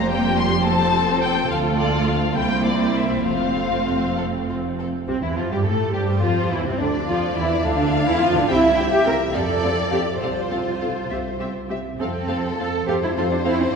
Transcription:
Already playing: F1 F2 G3 A#3 G4 C5 A#5
0.10 G5
0.38 C6
0.65 F3 C4 A4 C5 A5
1.22 G5
1.49 D2 A3 F4 A4 F5
1.77 D5
2.06 F5
2.34 C2 A#3 C4 E4 C5 G5
2.66 D5
2.97 E5
3.25 F1 F2 A3 C4 F4 C5 F5
4.17 A4
4.49 F4
4.79 A4
5.08 C2 C3 C4
5.22 E2 E3 E4
5.37 F2 F3 F4
5.51 G2 G3 G4
5.64 A2 A3 A4
5.93 G2 G3 G4 C5
6.21 F2 F3 F4
6.50 E2 E3 E4
6.64 C2 C3 C4
6.78 D2 D3 D4 D5
7.06 F2 F3 F4
7.35 E2 E3 E4
7.63 D2 D3 D4 F5
8.05 E2 E3 E4
8.20 F2 F3 F4
8.34 D2 D3 D4
8.48 C2 C4 E4 G4 E5 G5
8.75 C4 G4 G5
8.92 G4
9.04 C4 G4 A#4 G5
9.32 F2 C4 A4 D5 F5
9.62 C4 A4 F5
9.90 C4 G4 A4 F5
10.21 C2 C4 F4 A4 C5 F5
10.51 C4 A4 F5
10.81 C4 A4 F5
11.10 C2 C4 G4 E5
11.40 C4 G4 E5
11.69 C4 G4 E5
11.99 F2 C4 A4 F5
12.28 C4 A4 F5
12.58 C4 A4 F5
12.87 F2 C4 G4 A4 C5 F5
13.03 E4
13.18 C4 F4 A4 F5
13.31 D4
13.45 C4 E4 A4 F5
13.60 C4

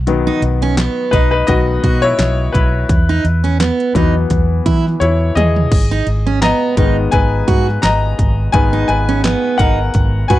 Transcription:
Already playing: B1
0.07 D#3 F#3 B3, closed hi-hat
0.27 D#4
0.42 B1, closed hi-hat
0.62 C#4, closed hi-hat
0.77 B3, snare, clap, closed hi-hat
1.11 B1 D#4 B4, kick, closed hi-hat
1.31 D#4 B4
1.47 B1 D#3 F#3 B3 F#4 D#5, kick, closed hi-hat
1.83 B2 F#4, kick, closed hi-hat
2.02 E4 C#5, snare
2.19 B1, snare, clap, closed hi-hat
2.52 B1 E4 B4, kick, closed hi-hat
2.89 E2, kick, closed hi-hat
3.09 D#4
3.24 E2, closed hi-hat
3.44 C#4, closed hi-hat
3.60 B3, snare, clap, closed hi-hat
3.80 closed hi-hat
3.95 E2 E3 F#3 B3 D#4, kick, closed hi-hat
4.30 E2, kick, closed hi-hat
4.66 E3 E4, kick, closed hi-hat
4.86 snare
5.00 E2 E4 C#5, closed hi-hat, high tom
5.35 E2 G#4 D#5, closed hi-hat, mid tom
5.56 floor tom
5.71 G#1, kick, crash
5.91 D#4
6.07 G#1, closed hi-hat
6.26 C#4, closed hi-hat
6.42 B3 D#5 A#5, snare, clap, closed hi-hat
6.77 G#1 D#3 G#3 B3 D#4, kick, closed hi-hat
7.11 G#1 B4 G#5, kick, closed hi-hat
7.48 G#2 F#4, kick, closed hi-hat
7.68 snare
7.82 G#1 D#5 A#5, snare, clap, closed hi-hat
8.19 G#1, kick, closed hi-hat
8.52 G#1 D#3 G#3 B3 B4 G#5, kick, closed hi-hat
8.73 D#4
8.88 G#1 B4 G#5, closed hi-hat
9.09 C#4, closed hi-hat
9.24 B3, snare, clap, closed hi-hat
9.58 G#1 D#4 A#4 F#5, kick, closed hi-hat
9.94 G#1, kick, closed hi-hat
10.28 G#2 F#4 B4 G#5, kick, closed hi-hat

